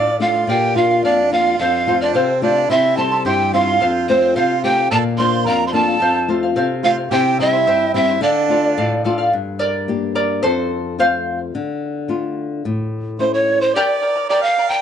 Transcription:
Already playing: nylon-string guitar A2, charango A4 D5 F5, pan flute D5, harmonica D5
0.20 nylon-string guitar A3 D4 F4, harmonica F4, charango A4 D5 F5, pan flute F5
0.34 charango D5 F5
0.47 nylon-string guitar A#2, harmonica G4, charango A#4 D5 F5, pan flute G5
0.75 nylon-string guitar A#3 D4 F4, harmonica F4, charango A#4 D5 F5, pan flute F5
0.90 charango D5 F5
1.03 nylon-string guitar F2, harmonica D4, charango A#4 D5 F5, pan flute D5
1.31 nylon-string guitar A#3 D4 F4, harmonica F4, charango A#4 D5 F5, pan flute F5
1.46 charango D5 F5
1.59 nylon-string guitar F2, harmonica F4, charango A4 C5 F5, pan flute F5
1.86 nylon-string guitar A3 C4 F4, charango A4 C5 F5
2.01 harmonica D4, charango C5 F5, pan flute D5
2.14 nylon-string guitar C3, harmonica C4, charango A4 C5 F5, pan flute C5
2.42 nylon-string guitar A3 C4 F4, harmonica D4, charango A4 C5 F5, pan flute D5
2.56 charango C5 F5
2.70 nylon-string guitar C3, harmonica E4, charango E4 G4 C5 E5 C6, pan flute E5
2.97 nylon-string guitar G3 C4 E4, charango E4 C5 E5 C6, harmonica A4, pan flute A5
3.12 charango E4 E5 C6
3.25 nylon-string guitar G2, charango E4 G4 C5 E5 C6, harmonica G4, pan flute G5
3.53 nylon-string guitar G3 C4 E4, charango E4 C5 E5 C6, harmonica F4, pan flute F5
3.68 charango E4 E5 C6
3.81 nylon-string guitar F2, charango A4 C5 F5
4.08 nylon-string guitar A3 C4 F4, harmonica C4, charango A4 C5 F5, pan flute C5
4.22 charango C5 F5
4.35 nylon-string guitar C3, harmonica F4, charango A4 C5 F5, pan flute F5
4.63 nylon-string guitar A3 C4 F4, harmonica G4, charango A4 C5 F5, pan flute G5
4.77 charango C5 F5
4.91 nylon-string guitar A#2, harmonica A4, charango A#4 D5 F5, pan flute A5
5.18 nylon-string guitar A#3 D4 F4, charango A#4 D5 F5, harmonica C5, pan flute C6
5.33 charango D5 F5
5.46 nylon-string guitar F2, harmonica A#4, charango A#4 D5 F5, pan flute A#5
5.67 harmonica C5, pan flute C6
5.73 nylon-string guitar A#3 D4 F4, harmonica A4, charango A#4 D5 F5, pan flute A5
5.87 charango D5 F5
6.00 nylon-string guitar F2, charango A4 C5 F5
6.28 nylon-string guitar A3 C4 F4, charango A4 C5 F5
6.43 charango C5 F5
6.56 nylon-string guitar C3, charango A4 C5 F5
6.83 nylon-string guitar A3 C4 F4, harmonica F4, charango A4 C5 F5, pan flute F5
6.97 charango C5 F5
7.11 nylon-string guitar C3, charango E4 G4 C5 E5 G5, harmonica G4, pan flute G5
7.38 nylon-string guitar G3 C4 E4, harmonica E4, charango E4 C5 E5 G5, pan flute E5
7.52 charango E4 C5 G5
7.67 nylon-string guitar G2, charango E4 G4 C5 E5 G5
7.94 nylon-string guitar G3 C4 E4, harmonica E4, charango E4 C5 E5 G5, pan flute E5
8.08 charango E4 C5 G5
8.21 nylon-string guitar D3, harmonica D4, charango A4 D5 F5, pan flute D5
8.49 nylon-string guitar A3 D4 F4, charango A4 D5 F5
8.64 charango D5 F5
8.77 nylon-string guitar A2, charango A4 D5 F5
9.04 nylon-string guitar A3 D4 F4, charango A4 D5 F5
9.18 charango D5 F5
9.33 nylon-string guitar G2
9.59 charango A#4 D5
9.88 nylon-string guitar A#3 D4 G4
10.15 charango A#4 D5
10.43 nylon-string guitar F2, charango A4 C5
10.98 nylon-string guitar A3 C4 F4, charango C5 F5
11.55 nylon-string guitar D3
12.08 nylon-string guitar A3 D4 F4
12.65 nylon-string guitar A2
13.19 nylon-string guitar A3 C#4 E4, harmonica C5, pan flute C5
13.33 harmonica C#5, pan flute C#5
13.61 pan flute C5, harmonica C5
13.75 charango G4 A#4 D5 G5 A#5, pan flute D5, harmonica D5
14.02 charango A#4 D5 G5 A#5
14.16 charango A#4 D5 A#5
14.29 charango G4 A#4 D5 G5 A#5, pan flute D5, harmonica D5
14.42 harmonica F5, pan flute F5
14.57 charango A#4 D5 G5 A#5
14.69 charango A#4 D5 A#5, pan flute G5, harmonica G5

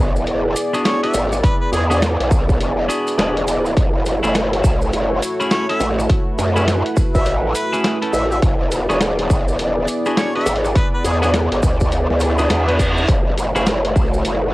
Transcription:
Already playing: wobble bass G#1, analog synth pad B3 E4 G#4 D5
0.16 maracas
0.26 wobble bass E1, closed hi-hat, maracas
0.56 closed hi-hat, maracas
0.73 clean electric guitar B3 D4 F#4 G#4, closed hi-hat, maracas
0.85 harmonica C#5, snare, closed hi-hat, maracas
1.03 clean electric guitar B3 D4 F#4 B4, harmonica E5, closed hi-hat
1.14 wobble bass G#1, closed hi-hat, maracas
1.32 cross-stick, maracas
1.43 harmonica B4, kick, closed hi-hat, maracas
1.61 harmonica B4
1.72 wobble bass E2, harmonica G#4, closed hi-hat, maracas
1.90 clean electric guitar B3 D4 F#4 G#4, harmonica G#4, cross-stick, closed hi-hat, maracas
2.02 snare, closed hi-hat, maracas
2.20 wobble bass B1, closed hi-hat
2.31 kick, maracas
2.49 kick, maracas
2.60 wobble bass E1, closed hi-hat, maracas
2.88 clean electric guitar B3 D4 F#4 G#4, closed hi-hat, maracas
3.07 closed hi-hat, maracas
3.18 wobble bass E1, clean electric guitar B3 D4 F#4 G#4, snare, closed hi-hat, maracas
3.37 closed hi-hat
3.48 closed hi-hat, maracas
3.66 maracas
3.76 wobble bass F#1, analog synth pad A3 F#4 C#5, kick, closed hi-hat, maracas
4.06 closed hi-hat, maracas
4.23 wobble bass F#1, clean electric guitar A3 C#4 E4 G#4, closed hi-hat, maracas
4.35 snare, closed hi-hat, maracas
4.53 closed hi-hat
4.64 wobble bass B1, kick, maracas
4.81 maracas
4.93 wobble bass F#1, closed hi-hat, maracas
5.22 closed hi-hat, maracas
5.40 clean electric guitar A3 C#4 E4 G#4, closed hi-hat, maracas
5.51 harmonica C#5, snare, closed hi-hat, maracas
5.69 clean electric guitar A3 C#4 E4 A4, harmonica E5, closed hi-hat
5.80 wobble bass A1, closed hi-hat, maracas
5.99 cross-stick, maracas
6.09 analog synth pad B4, kick, closed hi-hat, maracas
6.38 wobble bass F#2, closed hi-hat, maracas
6.56 clean electric guitar A3 C#4 E4 G#4, cross-stick, closed hi-hat, maracas
6.68 snare, closed hi-hat, maracas
6.86 closed hi-hat
6.97 kick, maracas
7.15 wobble bass A1, harmonica E5, kick, maracas
7.26 closed hi-hat, maracas
7.55 harmonica B4, closed hi-hat, maracas
7.73 clean electric guitar A3 C#4 E4 G#4, closed hi-hat, maracas
7.84 snare, closed hi-hat, maracas
8.02 clean electric guitar A3 C#4 E4 A4, closed hi-hat
8.13 wobble bass A1, harmonica E5, maracas
8.32 harmonica E5, maracas
8.42 wobble bass E1, analog synth pad B3 G#4 D5, kick, closed hi-hat, maracas
8.71 closed hi-hat, maracas
8.89 wobble bass E1, clean electric guitar B3 D4 F#4 G#4, cross-stick, closed hi-hat, maracas
9.01 snare, closed hi-hat, maracas
9.19 closed hi-hat
9.30 kick, maracas
9.48 maracas
9.59 wobble bass E1, closed hi-hat, maracas
9.88 closed hi-hat, maracas
10.06 clean electric guitar B3 D4 F#4 G#4, closed hi-hat, maracas
10.17 harmonica C#5, snare, closed hi-hat, maracas
10.35 clean electric guitar B3 D4 F#4 B4, harmonica E5, closed hi-hat
10.41 closed hi-hat
10.46 wobble bass G#1, closed hi-hat, maracas
10.56 closed hi-hat
10.65 cross-stick, maracas
10.75 harmonica B4, kick, closed hi-hat, maracas
10.94 harmonica B4
11.04 wobble bass E2, harmonica G#4, closed hi-hat, maracas
11.22 clean electric guitar B3 D4 F#4 G#4, harmonica G#4, cross-stick, closed hi-hat, maracas
11.34 snare, closed hi-hat, maracas
11.51 wobble bass G#1, closed hi-hat
11.63 wobble bass D2, kick, maracas
11.80 kick, maracas
11.92 closed hi-hat, reverse cymbal, maracas
12.10 wobble bass D2, snare
12.20 closed hi-hat, maracas
12.38 clean electric guitar B3 D4 F#4 G#4, closed hi-hat, maracas
12.50 wobble bass E2, snare, closed hi-hat, maracas
12.68 clean electric guitar B3 D4 F#4 B4, closed hi-hat
12.79 kick, closed hi-hat, maracas
12.97 maracas
13.08 wobble bass F#1, analog synth pad A3 E4 F#4 C#5, kick, closed hi-hat, maracas
13.38 closed hi-hat, maracas
13.55 wobble bass F#1, clean electric guitar A3 C#4 E4 G#4, cross-stick, closed hi-hat, maracas
13.66 snare, closed hi-hat, maracas
13.85 closed hi-hat
13.96 wobble bass B1, kick, maracas
14.14 maracas
14.25 wobble bass F#1, closed hi-hat, maracas

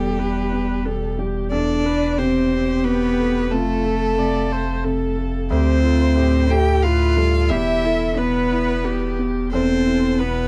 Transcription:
Already playing: sub bass E1, grand piano E2 B3, cello G3, violin G4, viola A4
0.19 grand piano B2, viola B4
0.52 grand piano B3
0.85 grand piano B2, viola A4
1.19 grand piano G3, viola G4
1.51 grand piano E2, cello D4, viola A4, violin D5
1.85 grand piano B3, viola B4
2.18 grand piano C3, cello C4, viola G4, violin C5
2.53 grand piano C4
2.84 grand piano B2, cello B3, violin B4
3.19 grand piano A3
3.51 sub bass F1, grand piano F2, cello A3, viola F4, violin A4
3.85 grand piano A3, viola A4
4.18 grand piano C3, viola D5
4.51 grand piano A3, viola C5
4.84 grand piano C3, viola A4
5.17 grand piano A3
5.50 grand piano D2, sub bass D2, cello C4, viola G4, violin C5
5.83 grand piano A3, viola F4
6.17 grand piano A2, viola G4
6.50 grand piano A3, cello G4, viola A4, violin G5
6.83 grand piano A2, cello F4, viola B4, violin F5
7.17 grand piano G3, viola A4
7.49 sub bass E1, grand piano E2, cello E4, viola G4, violin E5
7.84 grand piano E4, viola A4
8.16 grand piano B2, cello B3, violin B4, viola B4
8.52 grand piano E4
8.84 grand piano B2, viola G4
9.19 grand piano B3
9.51 grand piano E2, cello C4, viola A4, violin C5
9.86 grand piano E4
10.19 grand piano B2, cello B3, violin B4, viola B4

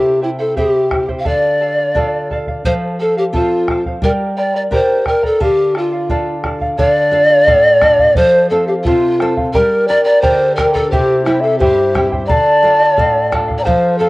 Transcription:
Already playing: nylon-string guitar C3, charango E4 G4 C5 E5 G5, pan flute G4
0.22 charango E4 C5 E5 G5, pan flute E4
0.39 charango E4 C5 G5, pan flute A4
0.56 nylon-string guitar C4 E4 G4, charango E4 G4 C5 E5 G5, pan flute G4, bombo low
0.91 charango E4 C5 E5 G5, bombo rim, bombo low
1.08 charango E4 C5 G5, bombo low
1.20 pan flute F5
1.25 nylon-string guitar D3, charango A4 D5 F5, pan flute D5, bombo low
1.61 charango A4 D5 F5
1.78 charango D5 F5
1.95 nylon-string guitar D4 F4 A4, charango A4 D5 F5, bombo low
2.31 charango A4 D5 F5, bombo low
2.47 charango D5 F5, bombo low
2.65 nylon-string guitar F3, charango A4 C5 F5, pan flute C5, bombo low
3.00 charango A4 C5 F5, pan flute A4
3.17 pan flute G4, charango C5 F5
3.33 nylon-string guitar C4 F4 A4, pan flute F4, charango A4 C5 F5, bombo low
3.68 charango A4 C5 F5, bombo rim, bombo low
3.85 charango C5 F5, bombo low
4.02 nylon-string guitar G3, charango G4 A#4 D5 G5 A#5, pan flute A#4, bombo low
4.37 charango A#4 D5 G5 A#5, pan flute D5
4.54 charango A#4 D5 A#5, pan flute D5
4.71 nylon-string guitar D4 G4 A#4, charango G4 A#4 D5 G5 A#5, pan flute C5, bombo low
5.06 charango A#4 D5 G5 A#5, pan flute A#4, bombo rim, bombo low
5.23 pan flute A4, charango A#4 D5 A#5, bombo low
5.40 nylon-string guitar D3, pan flute G4, charango A4 D5 F5, bombo low
5.75 pan flute F4, charango A4 D5 F5, bombo rim
5.93 charango D5 F5
6.09 nylon-string guitar D4 F4 A4, charango A4 D5 F5, bombo low
6.44 charango A4 D5 F5, bombo rim, bombo low
6.61 charango D5 F5, bombo low
6.78 nylon-string guitar D3, charango A4 D5 F5, pan flute D5, bombo low
7.11 nylon-string guitar D4 F4 A4, charango A4 D5 F5
7.30 charango D5 F5
7.47 nylon-string guitar A2, charango A4 D5 F5, bombo low
7.81 nylon-string guitar D4 F4 A4, charango A4 D5 F5, bombo rim, bombo low
7.99 charango D5 F5, bombo low
8.15 nylon-string guitar F3, charango A4 C5 F5, pan flute C5, bombo low
8.50 nylon-string guitar C4 F4 A4, pan flute A4, charango A4 C5 F5
8.68 pan flute G4, charango C5 F5
8.84 nylon-string guitar C3, pan flute F4, charango A4 C5 F5, bombo low
9.20 nylon-string guitar C4 F4 A4, charango A4 C5 F5, bombo rim
9.37 charango C5 F5, bombo low
9.53 nylon-string guitar G3, charango G4 A#4 D5 G5 A#5, pan flute A#4, bombo low
9.88 nylon-string guitar D4 G4 A#4, charango A#4 D5 G5 A#5, pan flute D5
10.04 charango A#4 D5 A#5, pan flute D5
10.22 nylon-string guitar D3, charango G4 A#4 D5 G5 A#5, pan flute C5, bombo low
10.56 nylon-string guitar D4 G4 A#4, pan flute A#4, charango A#4 D5 G5 A#5, bombo rim, bombo low
10.74 pan flute A4, charango A#4 D5 A#5, bombo low
10.90 nylon-string guitar C3, charango E4 G4 C5 E5 G5, pan flute G4, quena C5, bombo low
11.24 nylon-string guitar C4 E4 G4, pan flute E4, charango E4 C5 E5 G5, quena C5, bombo rim
11.41 pan flute A4, quena E5, charango G5
11.45 charango E4 C5
11.58 nylon-string guitar G2, charango E4 G4 C5 E5 G5, pan flute G4, quena C5, bombo low
11.95 nylon-string guitar C4 E4 G4, charango E4 C5 E5 G5, bombo rim, bombo low
12.12 charango E4 C5 G5, bombo low
12.26 nylon-string guitar D3, charango A4 D5 F5, pan flute D5, quena A#5, bombo low
12.32 quena A5
12.63 nylon-string guitar D4 F4 A4, charango A4 D5 F5
12.81 charango D5 F5
12.97 nylon-string guitar A2, charango A4 D5 F5, bombo low
13.32 nylon-string guitar D4 F4 A4, charango A4 D5 F5, bombo rim, bombo low
13.48 charango D5 F5, bombo low
13.58 pan flute D5, quena A#5
13.64 nylon-string guitar F3, charango A4 C5 F5, pan flute C5, quena F5, bombo low
13.98 nylon-string guitar C4 F4 A4, pan flute A4, charango A4 C5 F5, quena F5

